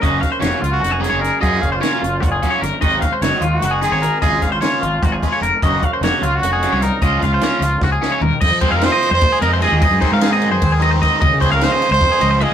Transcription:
<<
  \new Staff \with { instrumentName = "Clean electric guitar" } { \time 7/8 \key des \major \tempo 4 = 150 ees''8 f''16 c''16 des''8 f'8 ges'16 aes'8 des''16 bes'8 | ees''8 f''16 c''16 des''8 f'8 ges'16 aes'8 des''16 bes'8 | ees''8 f''16 c''16 des''8 f'8 ges'16 aes'8 des''16 bes'8 | ees''8 f''16 c''16 des''8 f'8 ges'16 aes'8 des''16 bes'8 |
ees''8 f''16 c''16 des''8 f'8 ges'16 aes'8 des''16 bes'8 | ees''8 f''16 c''16 des''8 f'8 ges'16 aes'8 des''16 bes'8 | ees''8 c''16 f''8 ees''8 c''8 aes'16 ees''16 c''16 ees''8 | ees''8 c''16 f''8 ees''8 c''8 aes'16 ees''16 c''16 ees''8 |
ees''8 c''16 f''8 ees''8 c''8 aes'16 ees''16 c''16 ees''8 | }
  \new Staff \with { instrumentName = "Trumpet" } { \time 7/8 \key des \major r4. f'16 ges'8. aes'4 | aes'8. f'16 f'2 r8 | r4. f'16 ges'8. aes'4 | aes'8. f'16 f'2 r8 |
r4. f'16 ges'4~ ges'16 ees'8 | f'2~ f'8 r4 | r8 aes'16 bes'16 c''8. c''8. bes'8 aes'8~ | aes'8. bes'16 aes'2 r8 |
r8 aes'16 bes'16 c''8. c''4~ c''16 aes'8 | }
  \new Staff \with { instrumentName = "Clean electric guitar" } { \time 7/8 \key des \major << { <ges bes des' ges'>8 des'8 ges'2~ ges'8 | f'8 des'8 des'2~ des'8 | ges'8 des'8 ges'2~ ges'8 | f'8 des'8 des'2~ des'8 |
<ges bes des' ges'>8 des'8 ges'2~ ges'8 | des'8 des'8 des'2~ des'8 | r8 aes8 c'16 ees'8. aes4 ees'8 | r8 c'8 ees'4 c'4 c'16 ees'16 |
r8 c'8 ees'4 c'4 c'16 r16 | } \\ { ges,4. ges4 des4 | ges,4. ges4 f,8 ges,8 | aes,4. ees4 aes,4 | aes,4. f4 aes,4 |
ges,4. ges4 des4 | des4. f8 c8 des8 ees8 | f,4. f4. c8 | aes,4. ees4. aes,8 |
des4. f4. aes,8 | } >> }
  \new Staff \with { instrumentName = "Overdriven electric guitar" } { \clef bass \time 7/8 \key des \major <des ges bes des'>8 r8 <des ges bes des'>8 r4 <des ges bes des'>8 r8 | <des ges bes des'>8 r8 <des ges bes des'>8 r4 <des ges bes des'>8 r8 | <ees ges c' ees'>8 r8 <ees ges c' ees'>8 r4 <ees ges c' ees'>8 r8 | <des aes des' f'>8 r8 <des aes des' f'>8 r4 <des aes des' f'>8 r8 |
<des ges bes des'>8 r8 <des ges bes des'>8 r4 <des ges bes des'>8 r8 | <des f aes des'>8 r8 <des f aes des'>8 r4 <des f aes des'>8 r8 | r8 <c f aes c'>8 <c f aes c'>8 r4 <c f aes c'>8 <c f aes c'>8 | r8 <ees ges c' ees'>8 <ees ges c' ees'>8 r4 <ees ges c' ees'>8 <ees ges c' ees'>8 |
r8 <des f aes des'>8 <des f aes des'>8 r4 <des f aes des'>8 <des f aes des'>8 | }
  \new Staff \with { instrumentName = "Fingered electric bass" } { \clef bass \time 7/8 \key des \major ges,,8 r8 f,,16 r16 des,8 f,,8. ges,,8 r16 | ges,8 ges,,8 r8 ges,,8 ges,,8 r8 g,,16 r16 | aes,,8 r8 ges,,16 r16 ees,8 ges,,8. aes,,8 r16 | aes,,8 aes,,8 r8 aes,,8 aes,,8 r8 f,,16 r16 |
ges,,8 r8 f,,16 r16 des,8 f,,8. c,8 r16 | des,8 des,8 r8 des,8 des,8 r8 ees,16 r16 | f,16 f8 f,8 r8 f,16 bes,16 r16 f,8. ees,16 | aes,16 ges,16 r16 aes,4 ges,16 ees,4. |
des,16 des8 des,8 r8 des,16 f,16 r16 des,8. r16 | }
  \new DrumStaff \with { instrumentName = "Drums" } \drummode { \time 7/8 <hh bd>8 <hh bd sn>8 <hh sn>8 hh8 <hh sn>8 <hh sn>8 <hh sn>8 | <hh bd>8 <hh bd>8 <hh sn>8 hh8 <hh bd>8 <hh bd>8 <hh sn>8 | <hh bd>8 <hh bd sn>8 <hh sn>8 hh8 hh8 hh8 hh8 | <hh bd>8 <hh bd sn>8 <hh sn>8 hh8 <hh bd sn>8 <hh bd>8 hh8 |
<hh bd>8 <hh bd>8 <hh sn>8 hh8 hh8 hh8 <hh sn>8 | <hh bd>8 <hh bd sn>8 <hh sn>8 <hh sn>8 <bd sn>8 sn8 tomfh8 | <cymc bd>8 <bd cymr>8 <cymr sn>8 cymr8 <bd cymr>8 cymr8 <cymr sn>8 | <bd cymr>8 <bd cymr sn>8 <cymr sn>8 cymr8 <bd cymr>8 cymr8 <bd cymr sn>8 |
<bd cymr>8 <bd cymr>8 <cymr sn>8 <cymr sn>8 <bd cymr sn>8 cymr8 cymr8 | }
>>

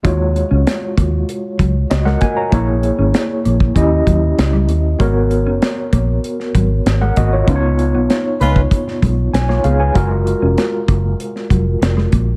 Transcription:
<<
  \new Staff \with { instrumentName = "Tine electric piano" } { \time 4/4 \key ees \minor \tempo 4 = 97 << { r2. <ges' ees''>16 <bes' ges''>16 aes''16 <des'' bes''>16~ | <des'' bes''>16 r2. r8. | r2. r16 <bes' ges''>16 <ges' ees''>16 <f' des''>16~ | <f' des''>16 r2 r8. aes''16 <f' des''>16 <aes' f''>16 <ces'' aes''>16~ |
<ces'' aes''>16 r2. r8. | } \\ { <aes f' ges' des''>1 | <bes fes' aes' des''>2 <des' fes' g' ees''>2 | <ces' ges' bes' des''>1 | <ces' ees' f' ces'' des''>1 |
<aes f' ges' bes'>1 | } >> }
  \new Staff \with { instrumentName = "Horn section" } { \time 4/4 \key ees \minor r1 | r1 | r1 | r4. <aes f' ces''>8 r2 |
r1 | }
  \new Staff \with { instrumentName = "Clean electric guitar" } { \time 4/4 \key ees \minor ees'16 r8 des'16 r8 bes16 r8. ges16 r8 aes16 bes16 r16 | bes16 r8 des'16 r8 bes16 r8. ges16 r8 g16 bes16 r16 | aes16 r8 des'16 r8 bes16 r8. ges16 r8 aes16 bes16 r16 | des'16 r8 ces'16 r8 bes16 r8. aes16 r8 bes16 ces'16 r16 |
ges'16 r8 des'16 r8 bes16 r8. ges16 r8 aes16 bes16 r16 | }
  \new Staff \with { instrumentName = "Fingered electric bass" } { \clef bass \time 4/4 \key ees \minor ees,8. des,16 r8 ees,8 r8 des,8 des,8 r8 | bes,,8. aes,,16 r8 bes,,8 ees,8 ees,8 des,8 ees,8 | aes,,8. ges,,16 r8 bes,,8 r8 aes,,8 aes,,8 aes,,8 | des,8. ces,16 r8 des,8 r8 ces,8 ces,8 des,8 |
ges,,8. f,,16 r8 ges,,8 r8 f,,8 f,,8 bes,,8 | }
  \new DrumStaff \with { instrumentName = "Drums" } \drummode { \time 4/4 <hh bd>8 hh8 <hh sn>8 <hh bd>8 hh8 <hh bd>8 <hh sn>16 sn16 <hh bd>8 | <hh bd>8 hh8 <hh sn>8 hh16 bd16 <hh bd>8 <hh bd>8 <hh sn>8 hh8 | <hh bd>8 hh8 <hh sn>8 <hh bd>8 hh16 sn16 <hh bd>8 <hh sn>8 <hh bd>8 | <hh bd>8 hh8 <hh sn>8 hh16 bd16 <hh bd>16 sn16 <hh bd>8 <hh sn>16 sn16 hh8 |
<hh bd>8 hh8 <hh sn>8 <hh bd>8 hh16 sn16 <hh bd>8 <hh sn>16 sn16 <hh bd>8 | }
>>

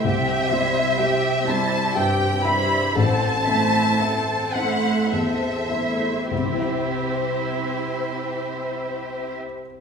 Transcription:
<<
  \new Staff \with { instrumentName = "Violin section" } { \time 3/4 \key c \major \tempo 4 = 54 e''4. a''8 g''8 b''8 | a''4. fis''8 e''4 | c''2. | }
  \new Staff \with { instrumentName = "Violin section" } { \time 3/4 \key c \major <g' g''>8 <c'' e''>8 <g' g''>8 <c'' e''>8 <g' g''>8 <c'' e''>8 | <a' c''>8 <c'' e''>8 <a' c''>8 <c'' e''>8 <a' c''>8 <c'' e''>8 | <g' e''>2. | }
  \new Staff \with { instrumentName = "Harp" } { \time 3/4 \key c \major << { <c c' c'' e''>8 c'8 e''8 c''8 e''8 c'8 | a,8 c'8 e''8 c''8 e''8 c'8~ | c'2. | } \\ { r2. | r2. | <c c' e' e''>2. | } >> }
  \new Staff \with { instrumentName = "Felt piano" } { \time 3/4 \key c \major c,8 c'8 e''8 c'8 g,8 e''8 | a,,8 c'8 e''8 c'8 e,8 e''8 | <c, c c' e' e''>2. | }
  \new Staff \with { instrumentName = "Viola section" } { \time 3/4 \key c \major <c' g'>8 <g e'>8 <c' g'>8 <g e'>8 <c' g'>8 <g e'>8 | c'8 <a e'>8 c'8 <a e'>8 c'8 <a e'>8 | <c' e'>2. | }
>>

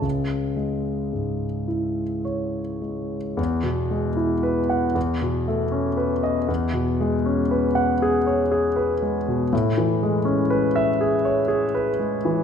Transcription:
<<
  \new Staff \with { instrumentName = "Grand piano" } { \time 6/8 \key e \major \tempo 4. = 39 r2 cis''8. r16 | r4 r16 fis''16 r4 r16 dis''16 | r4 r16 fis''8 r4 r16 | r4 r16 e''8 r4 r16 | }
  \new Staff \with { instrumentName = "Grand piano" } { \clef bass \time 6/8 \key e \major cis,8 gis8 gis,8 e'8. r16 gis8 | e,16 b,16 gis16 e'16 b'8 e,16 b,16 a16 cis'16 b'8 | e,16 b,16 gis16 cis'16 b'8 gis'16 cis''16 gis'16 b'16 gis16 b,16 | a,16 e16 gis16 cis'16 b'8 gis'16 cis''16 gis'16 b'16 gis16 e16 | }
>>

